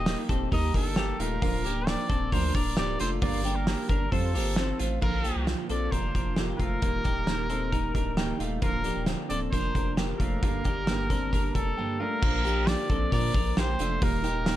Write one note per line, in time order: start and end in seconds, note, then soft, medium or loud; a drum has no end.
0.00 0.16 D#1 loud
0.00 0.27 A#3 medium
0.00 0.27 G4 medium
0.00 0.21 D#5 loud
0.06 0.29 G3 medium
0.06 0.30 A#3 medium
0.06 0.29 D#4 medium
0.06 0.28 G4 medium
0.06 snare loud
0.06 hi-hat pedal medium
0.06 open hi-hat medium
0.29 0.49 D#1 loud
0.29 0.51 A#3 medium
0.29 0.53 C4 medium
0.29 0.51 D#4 medium
0.29 0.51 G4 medium
0.29 0.51 A4 medium
0.29 kick medium
0.29 hi-hat pedal medium
0.29 open hi-hat medium
0.51 0.71 D#2 loud
0.51 0.74 D#3 medium
0.51 0.74 G3 medium
0.51 0.75 A#3 medium
0.51 0.74 D#4 medium
0.51 0.75 D#4 medium
0.51 0.73 G4 medium
0.51 0.73 A#4 medium
0.51 0.74 D#5 loud
0.51 kick medium
0.51 hi-hat pedal medium
0.51 open hi-hat medium
0.74 1.13 G1 medium
0.74 0.96 A#3 soft
0.74 0.98 D4 medium
0.74 0.97 D#4 soft
0.74 0.97 G4 medium
0.74 1.21 A4 medium
0.74 0.97 A#4 medium
0.74 kick medium
0.74 hi-hat pedal medium
0.74 open hi-hat medium
0.96 1.19 G3 medium
0.96 1.20 A#3 medium
0.96 1.19 D#4 medium
0.96 1.20 G4 medium
0.96 1.18 G4 medium
0.96 snare loud
0.96 hi-hat pedal medium
0.96 open hi-hat medium
1.19 1.39 D#1 loud
1.19 1.42 A3 medium
1.19 1.42 A#3 soft
1.19 1.42 D#4 soft
1.19 1.41 F4 medium
1.19 1.42 G4 soft
1.19 1.89 A#4 loud
1.19 hi-hat pedal medium
1.19 open hi-hat medium
1.42 1.96 D1 loud
1.42 1.65 D3 medium
1.42 1.65 F3 medium
1.42 1.65 A#3 medium
1.42 1.65 D4 medium
1.42 1.65 F4 medium
1.42 1.63 A#4 loud
1.42 kick loud
1.42 hi-hat pedal medium
1.42 open hi-hat loud
1.64 2.08 A#3 medium
1.64 1.87 A#3 soft
1.64 1.87 D4 medium
1.64 2.07 G4 medium
1.64 hi-hat pedal medium
1.64 open hi-hat medium
1.87 2.10 F3 medium
1.87 2.10 A#3 medium
1.87 2.09 D4 medium
1.87 2.08 A#4 medium
1.87 2.34 D5 loud
1.87 snare loud
1.87 hi-hat pedal medium
1.87 open hi-hat medium
2.09 2.29 D1 loud
2.09 2.32 A#3 soft
2.09 2.33 C4 medium
2.09 2.32 D4 soft
2.09 2.32 A4 medium
2.09 2.32 A#4 medium
2.09 kick medium
2.09 hi-hat pedal medium
2.09 open hi-hat medium
2.32 2.52 D2 loud
2.32 2.55 D3 medium
2.32 2.55 F3 medium
2.32 2.55 A#3 medium
2.32 2.54 D4 medium
2.32 2.54 A#4 medium
2.32 2.57 C5 loud
2.32 kick medium
2.32 hi-hat pedal medium
2.32 open hi-hat medium
2.55 2.74 D1 medium
2.55 2.76 A#3 soft
2.55 2.78 D4 medium
2.55 2.77 D4 medium
2.55 2.77 A#4 medium
2.55 2.77 D5 medium
2.55 kick medium
2.55 hi-hat pedal medium
2.55 open hi-hat medium
2.77 2.97 D1 loud
2.77 2.99 F3 medium
2.77 3.00 A#3 medium
2.77 2.99 D4 medium
2.77 3.00 G4 medium
2.77 2.98 A#4 medium
2.77 2.98 D5 loud
2.77 snare loud
2.77 hi-hat pedal medium
2.77 open hi-hat medium
2.99 3.19 F1 medium
2.99 3.23 A3 medium
2.99 3.22 A#3 soft
2.99 3.22 D4 medium
2.99 3.21 F4 medium
2.99 3.22 A#4 medium
2.99 3.10 C5 medium
2.99 hi-hat pedal medium
2.99 open hi-hat medium
3.22 3.76 G1 loud
3.22 3.45 G2 medium
3.22 3.45 D3 medium
3.22 3.44 G3 medium
3.22 3.44 A#3 medium
3.22 3.43 D4 loud
3.22 3.45 F4 medium
3.22 3.42 A#4 medium
3.22 3.57 D5 loud
3.22 kick loud
3.22 hi-hat pedal medium
3.22 open hi-hat medium
3.44 3.66 G3 soft
3.44 3.66 A#3 medium
3.44 3.87 A#3 medium
3.44 3.67 D4 medium
3.44 3.87 G4 medium
3.44 3.67 A#4 medium
3.44 hi-hat pedal medium
3.44 open hi-hat medium
3.55 3.88 A#4 medium
3.67 3.90 G3 medium
3.67 3.89 A#3 medium
3.67 3.89 D4 medium
3.67 3.88 A#4 medium
3.67 snare loud
3.67 hi-hat pedal medium
3.67 open hi-hat medium
3.88 4.09 G1 loud
3.88 4.10 G3 soft
3.88 4.11 A#3 soft
3.88 4.12 D4 soft
3.88 4.13 D4 medium
3.88 4.13 A#4 medium
3.88 4.12 A#4 medium
3.88 kick medium
3.88 hi-hat pedal medium
3.88 open hi-hat medium
4.11 4.36 F2 loud
4.11 4.34 F3 medium
4.11 4.34 G3 medium
4.11 4.34 C4 medium
4.11 4.33 F4 medium
4.11 4.35 F4 medium
4.11 4.79 A4 medium
4.11 4.32 A4 medium
4.11 4.35 C5 medium
4.11 kick medium
4.11 hi-hat pedal medium
4.11 open hi-hat medium
4.33 4.73 G1 medium
4.33 4.58 A#3 medium
4.33 4.56 C4 soft
4.33 4.57 F4 soft
4.33 4.57 G4 medium
4.33 4.57 A4 medium
4.33 hi-hat pedal medium
4.33 open hi-hat medium
4.56 4.79 G3 medium
4.56 4.80 C4 medium
4.56 4.78 F4 medium
4.56 4.80 A4 medium
4.56 4.78 A4 medium
4.56 snare loud
4.56 hi-hat pedal medium
4.56 open hi-hat medium
4.79 4.99 A1 loud
4.79 5.02 A3 medium
4.79 5.01 C4 soft
4.79 5.01 F4 medium
4.79 5.02 A4 medium
4.79 hi-hat pedal medium
4.79 open hi-hat medium
5.01 5.31 A#1 loud
5.01 5.24 A#2 medium
5.01 5.24 D3 medium
5.01 5.24 F3 medium
5.01 5.23 A#3 medium
5.01 5.24 A#3 medium
5.01 5.25 F4 medium
5.01 5.22 F4 medium
5.01 5.44 A#4 loud
5.01 kick loud
5.01 crash medium
5.23 5.46 F3 soft
5.23 5.46 A#3 soft
5.23 5.67 A#3 medium
5.23 5.46 F4 soft
5.23 5.67 G4 medium
5.23 closed hi-hat medium
5.36 5.55 C2 loud
5.46 5.69 A#2 medium
5.46 5.69 D3 medium
5.46 5.69 F3 medium
5.46 5.69 A#3 medium
5.46 5.68 F4 medium
5.46 snare medium
5.46 closed hi-hat medium
5.69 5.89 A#1 medium
5.69 5.91 F3 soft
5.69 5.92 A#3 soft
5.69 5.93 C4 medium
5.69 5.92 F4 soft
5.69 5.92 A4 medium
5.69 5.93 D5 medium
5.69 closed hi-hat medium
5.91 6.11 F1 medium
5.91 6.14 D3 medium
5.91 6.15 F3 medium
5.91 6.15 A#3 medium
5.91 6.15 D4 medium
5.91 6.14 F4 medium
5.91 6.14 A#4 medium
5.91 6.37 C5 medium
5.91 kick medium
5.91 closed hi-hat medium
6.15 6.53 F1 medium
6.15 6.38 F3 soft
6.15 6.38 A#3 soft
6.15 6.38 D4 medium
6.15 6.37 F4 soft
6.15 6.36 A#4 medium
6.15 kick medium
6.15 closed hi-hat medium
6.36 6.60 A#2 medium
6.36 6.60 D3 medium
6.36 6.60 F3 medium
6.36 6.60 A#3 medium
6.36 6.59 A#3 medium
6.36 6.58 F4 medium
6.36 6.59 G4 medium
6.36 snare loud
6.36 closed hi-hat medium
6.58 6.79 F1 medium
6.58 6.82 F3 soft
6.58 6.83 A3 soft
6.58 6.82 A#3 soft
6.58 6.81 F4 medium
6.58 6.82 F4 medium
6.58 8.35 A#4 loud
6.58 kick medium
6.58 closed hi-hat medium
6.82 7.01 D#1 loud
6.82 7.05 D#3 medium
6.82 7.05 G3 medium
6.82 7.04 A#3 medium
6.82 7.03 D#4 medium
6.82 7.05 F4 medium
6.82 kick loud
6.82 closed hi-hat medium
7.04 7.91 D#1 loud
7.04 7.27 G3 soft
7.04 7.47 A#3 medium
7.04 7.27 A#3 soft
7.04 7.27 D#4 soft
7.04 7.47 G4 medium
7.04 kick medium
7.04 closed hi-hat medium
7.27 7.50 D#3 medium
7.27 7.50 G3 medium
7.27 7.50 A#3 medium
7.27 7.49 D#4 medium
7.27 snare loud
7.27 closed hi-hat medium
7.50 7.72 G3 soft
7.50 7.73 A#3 soft
7.50 7.72 C4 medium
7.50 7.72 D#4 medium
7.50 7.72 A4 medium
7.50 closed hi-hat medium
7.72 7.95 D#3 medium
7.72 7.95 G3 medium
7.72 7.94 A#3 medium
7.72 7.95 D#4 medium
7.72 7.93 D#4 medium
7.72 7.94 A#4 medium
7.72 kick medium
7.72 closed hi-hat medium
7.94 8.33 D1 medium
7.94 8.16 G3 soft
7.94 8.16 A#3 soft
7.94 8.18 D4 medium
7.94 8.17 D#4 medium
7.94 8.17 A#4 medium
7.94 kick medium
7.94 closed hi-hat medium
8.17 8.40 D#3 medium
8.17 8.40 G3 medium
8.17 8.39 A#3 medium
8.17 8.40 A#3 medium
8.17 8.38 D#4 medium
8.17 8.40 G4 medium
8.17 snare loud
8.17 closed hi-hat medium
8.39 8.59 D#1 loud
8.39 8.62 G3 soft
8.39 8.63 A3 medium
8.39 8.61 A#3 soft
8.39 8.62 D#4 medium
8.39 8.61 F4 medium
8.39 closed hi-hat medium
8.62 8.91 D1 medium
8.62 8.85 D3 medium
8.62 8.85 F3 medium
8.62 8.83 A#3 medium
8.62 8.85 A#3 medium
8.62 8.83 D4 medium
8.62 8.85 F4 medium
8.62 9.04 A#4 loud
8.62 kick loud
8.62 closed hi-hat medium
8.84 9.06 F3 soft
8.84 9.06 A#3 soft
8.84 9.28 A#3 medium
8.84 9.07 D4 medium
8.84 9.27 G4 medium
8.84 closed hi-hat medium
8.96 9.15 D#1 medium
9.06 9.29 D3 medium
9.06 9.30 F3 medium
9.06 9.29 A#3 medium
9.06 9.28 D4 medium
9.06 snare loud
9.06 closed hi-hat medium
9.29 9.49 D1 medium
9.29 9.51 F3 soft
9.29 9.52 A#3 soft
9.29 9.53 C4 medium
9.29 9.52 D4 medium
9.29 9.52 A4 medium
9.29 9.40 D5 loud
9.29 closed hi-hat medium
9.51 9.71 F1 loud
9.51 9.75 D3 medium
9.51 9.75 F3 medium
9.51 9.75 A#3 medium
9.51 9.75 D4 medium
9.51 9.74 D4 medium
9.51 9.74 A#4 medium
9.51 9.94 C5 loud
9.51 kick medium
9.51 closed hi-hat medium
9.75 10.13 F1 medium
9.75 9.97 F3 soft
9.75 9.97 A#3 soft
9.75 9.97 D4 soft
9.75 9.98 D4 medium
9.75 9.97 A#4 medium
9.75 kick medium
9.75 closed hi-hat medium
9.97 10.20 D3 medium
9.97 10.20 F3 medium
9.97 10.20 A#3 medium
9.97 10.19 A#3 medium
9.97 10.18 D4 medium
9.97 10.20 G4 medium
9.97 snare loud
9.97 closed hi-hat medium
10.19 10.39 F1 medium
10.19 10.43 F3 soft
10.19 10.43 A3 medium
10.19 10.42 A#3 soft
10.19 10.42 D4 soft
10.19 10.42 F4 medium
10.19 11.50 A#4 loud
10.19 kick medium
10.19 closed hi-hat medium
10.42 10.61 G1 medium
10.42 10.65 G2 medium
10.42 10.65 D3 medium
10.42 10.65 G3 medium
10.42 10.65 A#3 medium
10.42 10.64 D4 medium
10.42 10.65 F4 medium
10.42 kick loud
10.42 closed hi-hat medium
10.65 11.51 G1 loud
10.65 10.88 G3 soft
10.65 11.08 A#3 medium
10.65 10.88 A#3 medium
10.65 10.87 D4 medium
10.65 11.07 G4 medium
10.65 kick medium
10.65 closed hi-hat medium
10.87 11.10 G2 medium
10.87 11.11 D3 medium
10.87 11.11 G3 medium
10.87 11.10 A#3 medium
10.87 11.10 D4 medium
10.87 snare loud
10.87 closed hi-hat medium
11.10 11.33 G3 soft
11.10 11.33 A#3 soft
11.10 11.33 C4 medium
11.10 11.33 D4 medium
11.10 11.32 A4 medium
11.10 kick medium
11.10 closed hi-hat medium
11.33 11.55 D3 medium
11.33 11.55 G3 medium
11.33 11.55 A#3 medium
11.33 11.55 D4 medium
11.33 11.54 D4 medium
11.33 11.54 A#4 medium
11.33 kick medium
11.33 closed hi-hat medium
11.54 11.74 F1 medium
11.54 11.78 G3 soft
11.54 11.78 A#3 soft
11.54 11.77 D4 medium
11.54 11.78 D4 medium
11.54 12.01 A4 loud
11.54 11.77 A#4 medium
11.54 kick medium
11.54 closed hi-hat medium
11.77 12.00 G2 medium
11.77 12.00 D3 medium
11.77 12.00 G3 medium
11.77 12.00 A#3 medium
11.77 12.00 A#3 loud
11.77 11.99 D4 loud
11.77 12.00 G4 medium
12.00 12.23 G3 soft
12.00 12.22 A3 medium
12.00 12.22 A#3 medium
12.00 12.22 D4 medium
12.00 12.21 F4 medium
12.00 12.70 A#4 loud
12.22 12.76 A#1 loud
12.22 12.45 A#2 medium
12.22 12.45 D3 medium
12.22 12.45 F3 medium
12.22 12.44 A#3 medium
12.22 12.43 D4 medium
12.22 12.45 F4 medium
12.22 kick loud
12.22 crash loud
12.45 12.67 F3 soft
12.45 12.68 A#3 soft
12.45 12.87 A#3 medium
12.45 12.67 D4 medium
12.45 12.87 G4 medium
12.45 hi-hat pedal medium
12.45 open hi-hat medium
12.67 12.90 D3 medium
12.67 12.90 F3 medium
12.67 12.90 A#3 medium
12.67 12.89 D4 medium
12.67 13.13 D5 loud
12.67 snare loud
12.67 hi-hat pedal medium
12.67 open hi-hat medium
12.89 13.09 A#1 medium
12.89 13.12 F3 soft
12.89 13.12 A#3 soft
12.89 13.13 C4 medium
12.89 13.12 D4 medium
12.89 13.12 A4 medium
12.89 kick loud
12.89 hi-hat pedal medium
12.89 open hi-hat medium
13.12 13.31 A#2 loud
13.12 13.35 A#2 medium
13.12 13.35 D3 medium
13.12 13.35 F3 medium
13.12 13.35 A#3 medium
13.12 13.35 D4 medium
13.12 13.34 D4 medium
13.12 13.33 A#4 medium
13.12 13.60 D5 loud
13.12 kick medium
13.12 hi-hat pedal medium
13.12 open hi-hat medium
13.34 13.54 A#1 medium
13.34 13.57 F3 soft
13.34 13.57 A#3 soft
13.34 13.57 D4 medium
13.34 13.58 D4 medium
13.34 13.57 A#4 medium
13.34 kick loud
13.34 hi-hat pedal medium
13.34 open hi-hat medium
13.57 13.76 A#1 loud
13.57 13.80 D3 medium
13.57 13.80 F3 medium
13.57 13.80 A#3 medium
13.57 13.79 D4 medium
13.57 13.80 G4 medium
13.57 14.05 C5 loud
13.57 snare loud
13.57 hi-hat pedal medium
13.57 open hi-hat medium
13.79 13.99 F1 loud
13.79 14.02 F3 soft
13.79 14.03 A3 medium
13.79 14.01 A#3 soft
13.79 14.02 D4 medium
13.79 14.01 F4 medium
13.79 hi-hat pedal medium
13.79 open hi-hat medium
14.02 14.55 D#1 loud
14.02 14.24 D#3 medium
14.02 14.25 G3 medium
14.02 14.24 A#3 medium
14.02 14.23 D#4 medium
14.02 14.25 F4 medium
14.02 14.56 A#4 loud
14.02 kick loud
14.02 hi-hat pedal medium
14.02 open hi-hat loud
14.24 14.45 G3 soft
14.24 14.46 A#3 medium
14.24 14.56 A#3 medium
14.24 14.46 D#4 medium
14.24 14.56 G4 medium
14.24 hi-hat pedal medium
14.24 open hi-hat medium
14.45 14.56 D#3 medium
14.45 14.56 G3 medium
14.45 14.56 A#3 medium
14.45 14.56 D#4 medium
14.45 snare loud
14.45 hi-hat pedal medium
14.45 open hi-hat medium